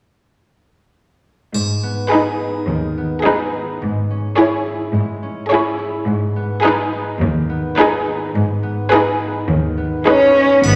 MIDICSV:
0, 0, Header, 1, 8, 480
1, 0, Start_track
1, 0, Key_signature, 5, "minor"
1, 0, Tempo, 569260
1, 1301, Time_signature, 4, 2, 24, 8
1, 9069, End_track
2, 0, Start_track
2, 0, Title_t, "Violin section"
2, 0, Program_c, 0, 48
2, 1780, Note_on_c, 0, 71, 34
2, 2140, Note_off_c, 0, 71, 0
2, 2753, Note_on_c, 0, 71, 34
2, 3105, Note_off_c, 0, 71, 0
2, 3702, Note_on_c, 0, 73, 35
2, 4053, Note_off_c, 0, 73, 0
2, 4642, Note_on_c, 0, 73, 38
2, 5001, Note_off_c, 0, 73, 0
2, 5609, Note_on_c, 0, 71, 42
2, 5963, Note_off_c, 0, 71, 0
2, 6562, Note_on_c, 0, 71, 48
2, 6918, Note_off_c, 0, 71, 0
2, 7522, Note_on_c, 0, 71, 46
2, 7877, Note_off_c, 0, 71, 0
2, 8486, Note_on_c, 0, 71, 38
2, 8848, Note_off_c, 0, 71, 0
2, 9069, End_track
3, 0, Start_track
3, 0, Title_t, "Violin section"
3, 0, Program_c, 1, 48
3, 1783, Note_on_c, 1, 68, 32
3, 2142, Note_off_c, 1, 68, 0
3, 2740, Note_on_c, 1, 68, 33
3, 3098, Note_off_c, 1, 68, 0
3, 3693, Note_on_c, 1, 68, 35
3, 4048, Note_off_c, 1, 68, 0
3, 4645, Note_on_c, 1, 68, 37
3, 5002, Note_off_c, 1, 68, 0
3, 5607, Note_on_c, 1, 68, 42
3, 5962, Note_off_c, 1, 68, 0
3, 6568, Note_on_c, 1, 68, 46
3, 6921, Note_off_c, 1, 68, 0
3, 7523, Note_on_c, 1, 68, 46
3, 7878, Note_off_c, 1, 68, 0
3, 8489, Note_on_c, 1, 68, 38
3, 8850, Note_off_c, 1, 68, 0
3, 9069, End_track
4, 0, Start_track
4, 0, Title_t, "Viola section"
4, 0, Program_c, 2, 48
4, 1789, Note_on_c, 2, 63, 31
4, 2145, Note_off_c, 2, 63, 0
4, 2745, Note_on_c, 2, 63, 31
4, 3101, Note_off_c, 2, 63, 0
4, 3696, Note_on_c, 2, 64, 34
4, 4050, Note_off_c, 2, 64, 0
4, 4654, Note_on_c, 2, 64, 38
4, 5007, Note_off_c, 2, 64, 0
4, 5605, Note_on_c, 2, 63, 41
4, 5961, Note_off_c, 2, 63, 0
4, 6565, Note_on_c, 2, 63, 42
4, 6920, Note_off_c, 2, 63, 0
4, 7531, Note_on_c, 2, 63, 42
4, 7882, Note_off_c, 2, 63, 0
4, 8492, Note_on_c, 2, 63, 37
4, 8851, Note_off_c, 2, 63, 0
4, 9069, End_track
5, 0, Start_track
5, 0, Title_t, "Harp"
5, 0, Program_c, 3, 46
5, 1300, Note_on_c, 3, 44, 34
5, 1544, Note_on_c, 3, 59, 26
5, 1786, Note_on_c, 3, 68, 29
5, 2030, Note_on_c, 3, 63, 27
5, 2272, Note_on_c, 3, 51, 27
5, 2498, Note_off_c, 3, 59, 0
5, 2508, Note_on_c, 3, 59, 26
5, 2736, Note_off_c, 3, 68, 0
5, 2746, Note_on_c, 3, 68, 26
5, 2969, Note_off_c, 3, 63, 0
5, 2980, Note_on_c, 3, 63, 28
5, 3208, Note_off_c, 3, 44, 0
5, 3218, Note_on_c, 3, 44, 36
5, 3240, Note_off_c, 3, 63, 0
5, 3243, Note_off_c, 3, 59, 0
5, 3245, Note_off_c, 3, 51, 0
5, 3462, Note_on_c, 3, 61, 27
5, 3685, Note_off_c, 3, 68, 0
5, 3695, Note_on_c, 3, 68, 29
5, 3932, Note_on_c, 3, 64, 30
5, 4169, Note_on_c, 3, 56, 31
5, 4397, Note_off_c, 3, 61, 0
5, 4407, Note_on_c, 3, 61, 31
5, 4636, Note_off_c, 3, 68, 0
5, 4646, Note_on_c, 3, 68, 31
5, 4869, Note_off_c, 3, 64, 0
5, 4879, Note_on_c, 3, 64, 33
5, 5109, Note_off_c, 3, 44, 0
5, 5120, Note_on_c, 3, 44, 40
5, 5141, Note_off_c, 3, 64, 0
5, 5144, Note_off_c, 3, 61, 0
5, 5364, Note_on_c, 3, 59, 34
5, 5597, Note_off_c, 3, 68, 0
5, 5607, Note_on_c, 3, 68, 37
5, 5844, Note_on_c, 3, 63, 38
5, 6082, Note_on_c, 3, 51, 37
5, 6309, Note_off_c, 3, 59, 0
5, 6319, Note_on_c, 3, 59, 36
5, 6552, Note_off_c, 3, 68, 0
5, 6562, Note_on_c, 3, 68, 36
5, 6793, Note_off_c, 3, 63, 0
5, 6803, Note_on_c, 3, 63, 35
5, 7032, Note_off_c, 3, 44, 0
5, 7042, Note_on_c, 3, 44, 45
5, 7266, Note_off_c, 3, 59, 0
5, 7276, Note_on_c, 3, 59, 36
5, 7458, Note_off_c, 3, 56, 0
5, 7505, Note_off_c, 3, 68, 0
5, 7515, Note_on_c, 3, 68, 39
5, 7749, Note_off_c, 3, 63, 0
5, 7759, Note_on_c, 3, 63, 38
5, 7985, Note_off_c, 3, 51, 0
5, 7995, Note_on_c, 3, 51, 34
5, 8232, Note_off_c, 3, 59, 0
5, 8242, Note_on_c, 3, 59, 32
5, 8474, Note_off_c, 3, 68, 0
5, 8720, Note_off_c, 3, 63, 0
5, 8730, Note_on_c, 3, 63, 31
5, 8964, Note_off_c, 3, 44, 0
5, 8974, Note_on_c, 3, 44, 35
5, 8989, Note_off_c, 3, 51, 0
5, 9069, Note_off_c, 3, 44, 0
5, 9069, Note_off_c, 3, 59, 0
5, 9069, Note_off_c, 3, 63, 0
5, 9069, End_track
6, 0, Start_track
6, 0, Title_t, "Cello section"
6, 0, Program_c, 4, 48
6, 1295, Note_on_c, 4, 44, 38
6, 1680, Note_off_c, 4, 44, 0
6, 2262, Note_on_c, 4, 39, 39
6, 2643, Note_off_c, 4, 39, 0
6, 3223, Note_on_c, 4, 44, 35
6, 3600, Note_off_c, 4, 44, 0
6, 4166, Note_on_c, 4, 44, 41
6, 4545, Note_off_c, 4, 44, 0
6, 5123, Note_on_c, 4, 44, 44
6, 5503, Note_off_c, 4, 44, 0
6, 6080, Note_on_c, 4, 39, 51
6, 6460, Note_off_c, 4, 39, 0
6, 7039, Note_on_c, 4, 44, 48
6, 7418, Note_off_c, 4, 44, 0
6, 8004, Note_on_c, 4, 39, 49
6, 8385, Note_off_c, 4, 39, 0
6, 8478, Note_on_c, 4, 61, 57
6, 8935, Note_off_c, 4, 61, 0
6, 8970, Note_on_c, 4, 59, 44
6, 9069, Note_off_c, 4, 59, 0
6, 9069, End_track
7, 0, Start_track
7, 0, Title_t, "Double bass section"
7, 0, Program_c, 5, 48
7, 8967, Note_on_c, 5, 32, 39
7, 9069, Note_off_c, 5, 32, 0
7, 9069, End_track
8, 0, Start_track
8, 0, Title_t, "Drums"
8, 1302, Note_on_c, 9, 81, 25
8, 1386, Note_off_c, 9, 81, 0
8, 8968, Note_on_c, 9, 81, 27
8, 9052, Note_off_c, 9, 81, 0
8, 9069, End_track
0, 0, End_of_file